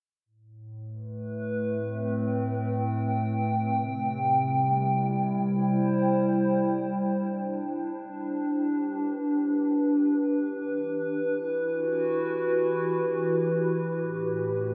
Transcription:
0.26 3.69 A2 medium
0.72 3.71 A3 medium
0.83 3.71 B4 medium
1.62 5.08 C4 medium
1.84 8.51 G5 medium
3.69 7.12 C3 medium
4.31 7.13 G3 medium
4.65 8.51 E4 medium
5.25 7.13 C5 medium
7.11 11.92 D4 medium
8.41 14.74 G4 medium
8.66 14.74 B4 medium
10.54 13.98 E3 medium
11.06 14.74 E4 medium
11.51 13.99 F#4 medium
13.97 14.74 A2 medium
14.24 14.74 A3 medium
14.58 14.74 C4 medium

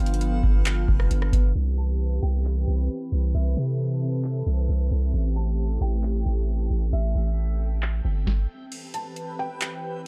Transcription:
0.00 0.42 G1 loud
0.00 1.51 F3 medium
0.00 1.31 B3 medium
0.00 1.52 B3 medium
0.00 1.51 D4 medium
0.00 1.52 F4 medium
0.00 1.52 A4 medium
0.00 0.20 B4 medium
0.00 0.62 F5 loud
0.00 1.52 F5 loud
0.00 1.11 G5 medium
0.06 closed hi-hat medium
0.14 closed hi-hat medium
0.21 1.55 B4 medium
0.21 closed hi-hat medium
0.44 0.87 G1 loud
0.44 kick medium
0.66 clap loud
0.66 closed hi-hat medium
0.88 1.10 F1 loud
0.88 kick loud
1.00 cross-stick medium
1.11 1.32 G1 loud
1.11 closed hi-hat medium
1.22 cross-stick medium
1.32 1.54 G1 loud
1.32 1.55 B3 medium
1.32 kick loud
1.32 closed hi-hat medium
1.55 2.20 C2 loud
1.55 5.10 E3 medium
1.55 8.23 C4 medium
1.55 8.68 C4 medium
1.55 3.33 G4 medium
1.55 5.10 B4 medium
1.55 3.33 B4 medium
1.55 5.10 E5 medium
1.78 2.20 A5 medium
2.23 2.66 C2 loud
2.23 2.86 G5 medium
2.45 clap loud
2.67 2.89 C2 loud
3.12 3.34 C2 loud
3.34 3.56 C2 loud
3.34 5.12 A4 medium
3.34 8.68 A4 medium
3.34 5.10 E5 medium
3.57 4.43 C3 loud
4.24 clap loud
4.46 4.68 C2 loud
4.69 4.90 C2 loud
4.91 5.13 C2 loud
5.13 5.78 A1 loud
5.13 8.24 E3 medium
5.13 8.24 A3 medium
5.13 8.24 G4 medium
5.13 8.68 G5 medium
5.36 5.78 A5 medium
5.81 6.24 A1 loud
5.81 6.44 G5 medium
6.03 clap loud
6.26 6.69 A1 loud
6.70 6.92 A1 loud
6.93 7.14 A1 loud
6.93 7.78 E5 loud
7.15 8.01 A1 loud
7.83 clap loud
8.05 8.26 G1 loud
8.27 kick loud
8.27 snare medium
8.72 10.07 E3 medium
8.72 10.07 C4 medium
8.72 10.07 G4 medium
8.72 10.07 B4 medium
8.72 10.07 E5 medium
8.72 closed hi-hat medium
8.72 crash medium
8.94 9.36 A5 medium
8.94 closed hi-hat medium
9.16 closed hi-hat medium
9.39 10.02 G5 medium
9.61 clap loud
9.61 closed hi-hat medium

